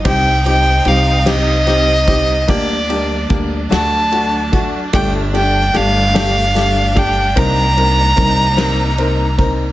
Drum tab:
RD |xxxxxx|xxxxxx|xxxxxx|xxxxxx|
SD |---oo-|---o--|---oo-|---o--|
BD |o----o|o-o--o|o----o|o-o--o|